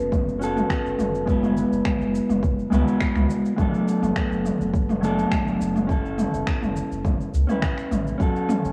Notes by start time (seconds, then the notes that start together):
Already playing: B3 C#4 F#4 A4 B4
0.00 F#1
0.12 kick, mid tom, shaker
0.29 shaker
0.39 C#4 F#4, shaker
0.43 A4
0.57 mid tom, shaker
0.70 finger snap, kick, shaker
0.85 F#1, shaker
0.99 F#1, mid tom, shaker
1.15 shaker
1.25 G#3 B3 E4 F#4, kick, shaker
1.30 B4
1.43 mid tom, shaker
1.57 shaker
1.72 F#1, shaker
1.85 finger snap, kick, mid tom, shaker
2.00 F#1, shaker
2.15 shaker
2.29 F#1, mid tom, shaker
2.43 kick, shaker
2.59 shaker
2.70 C#2 G#3 B3 E4 F#4, mid tom, shaker
2.74 B4
2.88 shaker
3.00 finger snap, kick, shaker
3.16 C#2, finger snap, mid tom, shaker
3.30 shaker
3.45 shaker
3.56 F#1 F#3 A3 B3 D4, kick, mid tom, shaker
3.60 A4
3.74 shaker
3.88 shaker
4.02 F#1, mid tom, shaker
4.16 finger snap, kick, shaker
4.31 F#1, shaker
4.45 mid tom, shaker
4.60 F#1, shaker
4.74 kick, shaker
4.89 mid tom, shaker
5.01 F#3 A3 B3 D4 A4, shaker
5.19 shaker
5.31 finger snap, kick, mid tom, shaker
5.47 F#1, shaker
5.60 F#1, shaker
5.76 mid tom, shaker
5.87 C#4 E4 A4, kick, shaker
6.06 shaker
6.18 mid tom, shaker
6.34 F#1, shaker
6.47 finger snap, kick, shaker
6.62 F#1, mid tom, shaker
6.76 shaker
6.91 F#1, shaker
7.05 kick, mid tom, shaker
7.21 shaker
7.33 C#2, shaker
7.47 C#4 E4, mid tom, shaker
7.51 B4
7.62 finger snap, kick, shaker
7.78 finger snap, shaker
7.91 A1, mid tom, shaker
8.07 shaker
8.18 F#1 F#3 C#4 F#4, kick, shaker
8.22 A4
8.36 shaker
8.49 C#4, mid tom, shaker
8.64 F#1, shaker